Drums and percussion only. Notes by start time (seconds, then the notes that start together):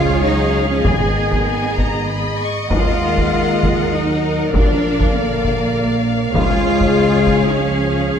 0.85 taiko
1.31 taiko
1.78 taiko
2.71 taiko
3.18 taiko
3.63 taiko
4.54 taiko
5.00 taiko
5.45 taiko
6.35 taiko
6.81 taiko
7.27 taiko